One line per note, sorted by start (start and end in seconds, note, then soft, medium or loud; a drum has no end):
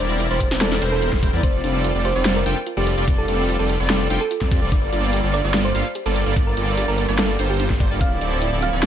0.00 0.28 E1 loud
0.00 0.28 G3 loud
0.00 0.28 C4 medium
0.00 0.28 E4 medium
0.00 0.28 A#4 medium
0.00 0.16 C5 medium
0.00 0.28 D5 loud
0.20 0.29 E4 medium
0.20 closed hi-hat medium
0.30 0.49 E1 medium
0.30 0.49 G3 medium
0.30 0.49 C4 medium
0.30 0.49 E4 medium
0.30 0.49 A#4 medium
0.30 0.50 C5 loud
0.30 0.49 D5 medium
0.41 0.44 G4 medium
0.41 kick medium
0.41 closed hi-hat medium
0.51 0.80 E1 loud
0.51 0.79 G3 medium
0.51 0.79 C4 medium
0.51 0.79 E4 medium
0.51 0.79 A#4 medium
0.51 0.79 D5 medium
0.51 snare medium
0.61 0.67 C4 medium
0.61 0.81 A4 loud
0.61 snare loud
0.61 closed hi-hat medium
0.72 snare medium
0.82 1.11 E1 loud
0.82 1.10 G3 medium
0.82 1.10 C4 medium
0.82 0.91 D4 medium
0.82 1.10 E4 medium
0.82 1.10 A#4 medium
0.82 1.10 C5 medium
0.82 closed hi-hat medium
0.92 1.05 A4 medium
1.02 1.11 E4 medium
1.02 closed hi-hat medium
1.13 1.31 E1 loud
1.13 1.31 G3 loud
1.13 1.31 C4 medium
1.13 1.31 E4 medium
1.13 1.31 A#4 medium
1.13 1.31 C5 loud
1.13 kick medium
1.13 snare soft
1.23 1.26 G4 medium
1.23 kick loud
1.23 closed hi-hat medium
1.33 1.41 E2 loud
1.33 1.41 G3 medium
1.33 1.41 C4 medium
1.33 1.41 E4 medium
1.33 1.41 A#4 medium
1.33 1.41 D5 loud
1.43 1.62 F1 loud
1.43 1.61 G3 medium
1.43 1.61 C4 medium
1.43 1.49 C4 medium
1.43 1.61 F4 medium
1.43 1.61 A4 medium
1.43 1.57 C5 loud
1.43 1.61 D5 loud
1.43 kick loud
1.43 closed hi-hat medium
1.64 1.93 F1 loud
1.64 1.92 G3 medium
1.64 1.92 C4 medium
1.64 1.73 D4 medium
1.64 1.92 F4 medium
1.64 1.92 A4 medium
1.64 1.92 D5 loud
1.64 closed hi-hat medium
1.84 1.93 F4 medium
1.84 closed hi-hat medium
1.95 2.13 F1 medium
1.95 2.13 G3 medium
1.95 2.13 C4 medium
1.95 2.13 F4 medium
1.95 2.13 A4 medium
1.95 2.13 D5 medium
2.05 2.09 G4 medium
2.05 2.25 C5 medium
2.05 closed hi-hat medium
2.15 2.44 F1 loud
2.15 2.44 G3 medium
2.15 2.44 C4 medium
2.15 2.44 F4 medium
2.15 2.44 A4 medium
2.15 2.44 D5 medium
2.25 2.32 C4 medium
2.25 snare loud
2.25 closed hi-hat medium
2.36 2.49 A#4 medium
2.46 2.54 F1 loud
2.46 2.57 G3 loud
2.46 2.57 C4 loud
2.46 2.55 D4 medium
2.46 2.57 F4 medium
2.46 2.57 A4 medium
2.46 2.57 G5 loud
2.46 closed hi-hat medium
2.67 2.76 F4 medium
2.67 closed hi-hat medium
2.77 2.96 F1 loud
2.77 2.95 G3 medium
2.77 2.95 C4 medium
2.77 2.95 F4 medium
2.77 2.90 G4 medium
2.77 2.95 A4 medium
2.77 2.95 D5 loud
2.87 2.91 G4 medium
2.87 closed hi-hat medium
2.97 3.06 F1 medium
2.97 3.05 G3 medium
2.97 3.05 C4 medium
2.97 3.05 F4 medium
2.97 3.05 A4 medium
2.97 3.05 D5 loud
3.08 3.26 F1 loud
3.08 3.26 G3 loud
3.08 3.26 C4 medium
3.08 3.14 C4 medium
3.08 3.26 F4 medium
3.08 3.26 A4 medium
3.08 3.26 D5 loud
3.08 kick loud
3.08 closed hi-hat medium
3.18 3.44 A4 medium
3.28 3.57 F1 loud
3.28 3.57 G3 medium
3.28 3.57 C4 medium
3.28 3.37 D4 medium
3.28 3.57 F4 medium
3.28 3.57 A4 medium
3.28 3.57 D5 loud
3.28 closed hi-hat medium
3.49 3.58 F4 medium
3.49 closed hi-hat medium
3.59 3.78 F1 medium
3.59 3.77 G3 medium
3.59 3.77 C4 medium
3.59 3.77 F4 medium
3.59 3.77 A4 medium
3.59 3.79 A4 medium
3.59 3.77 D5 medium
3.69 3.73 G4 medium
3.69 closed hi-hat medium
3.80 4.08 F1 loud
3.80 4.08 G3 medium
3.80 4.08 C4 medium
3.80 4.08 F4 medium
3.80 4.08 A4 medium
3.80 4.08 D5 medium
3.90 3.96 C4 medium
3.90 4.10 A4 loud
3.90 snare loud
3.90 closed hi-hat medium
4.10 4.19 F1 loud
4.10 4.21 G3 loud
4.10 4.21 C4 loud
4.10 4.19 D4 medium
4.10 4.21 F4 medium
4.10 4.21 A4 medium
4.10 4.21 G5 loud
4.10 closed hi-hat medium
4.21 4.34 A4 medium
4.31 4.40 F4 medium
4.31 closed hi-hat medium
4.41 4.60 F2 loud
4.41 4.59 G3 medium
4.41 4.60 C4 medium
4.41 4.59 F4 medium
4.41 4.59 A4 medium
4.41 4.60 D5 medium
4.41 4.60 D5 loud
4.41 kick medium
4.41 snare soft
4.51 4.55 G4 medium
4.51 kick loud
4.51 closed hi-hat medium
4.62 4.70 F1 medium
4.62 4.70 G3 loud
4.62 4.70 C4 medium
4.62 4.70 F4 medium
4.62 4.70 A4 medium
4.62 4.70 D5 loud
4.72 4.91 G1 loud
4.72 4.90 G3 loud
4.72 4.90 A#3 medium
4.72 4.78 D4 medium
4.72 4.90 F4 medium
4.72 4.90 A4 medium
4.72 4.85 D5 loud
4.72 4.90 D5 loud
4.72 kick loud
4.72 closed hi-hat medium
4.92 5.22 G1 loud
4.92 5.21 G3 medium
4.92 5.21 A#3 medium
4.92 5.21 F4 medium
4.92 5.02 F4 medium
4.92 5.21 A4 medium
4.92 5.21 D5 loud
4.92 closed hi-hat medium
5.13 5.22 G4 medium
5.13 closed hi-hat medium
5.24 5.42 G1 loud
5.24 5.42 G3 medium
5.24 5.42 A#3 medium
5.24 5.42 F4 medium
5.24 5.42 A4 medium
5.24 5.42 D5 medium
5.34 5.37 A4 medium
5.34 5.53 D5 loud
5.34 closed hi-hat medium
5.44 5.73 G1 medium
5.44 5.72 G3 medium
5.44 5.72 A#3 medium
5.44 5.72 F4 medium
5.44 5.72 A4 medium
5.44 5.72 D5 medium
5.54 5.60 D4 medium
5.54 snare loud
5.54 closed hi-hat medium
5.65 5.78 C5 medium
5.75 5.83 G1 medium
5.75 5.85 G3 loud
5.75 5.85 A#3 medium
5.75 5.85 F4 medium
5.75 5.84 F4 medium
5.75 5.85 A4 medium
5.75 5.85 F5 loud
5.75 closed hi-hat medium
5.95 6.04 G4 medium
5.95 closed hi-hat medium
6.06 6.24 G1 loud
6.06 6.24 G3 medium
6.06 6.24 A#3 medium
6.06 6.24 F4 medium
6.06 6.24 A4 medium
6.06 6.19 A4 medium
6.06 6.24 D5 medium
6.06 6.24 D5 loud
6.16 6.20 A4 medium
6.16 closed hi-hat medium
6.26 6.34 G1 medium
6.26 6.34 G3 medium
6.26 6.34 A#3 medium
6.26 6.34 F4 medium
6.26 6.34 A4 medium
6.26 6.34 D5 loud
6.36 6.55 G1 loud
6.36 6.55 G3 medium
6.36 6.55 A#3 medium
6.36 6.43 D4 medium
6.36 6.55 F4 medium
6.36 6.55 A4 medium
6.36 6.55 D5 loud
6.36 kick loud
6.36 closed hi-hat medium
6.47 6.73 A#4 loud
6.57 6.86 G1 loud
6.57 6.86 G3 loud
6.57 6.86 A#3 medium
6.57 6.86 F4 medium
6.57 6.66 F4 medium
6.57 6.86 A4 medium
6.57 6.86 D5 loud
6.57 closed hi-hat medium
6.77 6.87 G4 medium
6.77 closed hi-hat medium
6.88 7.07 G1 loud
6.88 7.06 G3 medium
6.88 7.06 A#3 medium
6.88 7.06 F4 medium
6.88 7.06 A4 medium
6.88 7.08 A#4 loud
6.88 7.06 D5 medium
6.98 7.02 A4 medium
6.98 closed hi-hat medium
7.08 7.37 G1 medium
7.08 7.37 G3 medium
7.08 7.37 A#3 medium
7.08 7.37 F4 medium
7.08 7.37 A4 medium
7.08 7.37 D5 medium
7.19 7.25 D4 medium
7.19 7.38 A4 loud
7.19 snare loud
7.19 closed hi-hat medium
7.39 7.68 G1 loud
7.39 7.68 G3 medium
7.39 7.68 A#3 medium
7.39 7.45 D4 medium
7.39 7.68 F4 medium
7.39 7.68 A4 medium
7.39 7.68 C5 medium
7.39 closed hi-hat medium
7.50 7.63 G4 medium
7.60 7.63 D4 loud
7.60 closed hi-hat medium
7.70 7.89 G1 loud
7.70 7.88 G3 medium
7.70 7.88 A#3 medium
7.70 7.88 F4 medium
7.70 7.88 A4 medium
7.70 7.88 C5 loud
7.70 kick medium
7.70 snare soft
7.80 7.84 D5 loud
7.80 kick loud
7.80 closed hi-hat medium
7.91 8.02 G1 loud
7.91 7.98 G3 medium
7.91 7.98 A#3 medium
7.91 7.98 F4 medium
7.91 7.98 A4 medium
7.91 7.98 D5 loud
8.01 8.19 D1 loud
8.01 8.19 F3 medium
8.01 8.07 C4 medium
8.01 8.19 C4 medium
8.01 8.19 E4 medium
8.01 8.19 A4 medium
8.01 8.19 D5 loud
8.01 8.14 F5 loud
8.01 kick loud
8.01 closed hi-hat medium
8.21 8.50 D1 loud
8.21 8.50 F3 medium
8.21 8.50 C4 medium
8.21 8.30 D4 medium
8.21 8.50 E4 medium
8.21 8.50 A4 medium
8.21 8.50 D5 loud
8.21 closed hi-hat medium
8.42 8.51 E4 medium
8.42 closed hi-hat medium
8.52 8.71 D1 loud
8.52 8.71 F3 medium
8.52 8.71 C4 medium
8.52 8.71 E4 medium
8.52 8.71 A4 medium
8.52 8.70 D5 medium
8.52 8.71 D5 medium
8.62 8.66 F4 medium
8.62 8.82 F5 loud
8.62 closed hi-hat medium
8.73 8.86 D1 loud
8.73 8.86 F3 medium
8.73 8.86 C4 medium
8.73 8.86 E4 medium
8.73 8.86 A4 medium
8.73 8.86 D5 medium
8.83 snare loud
8.83 closed hi-hat medium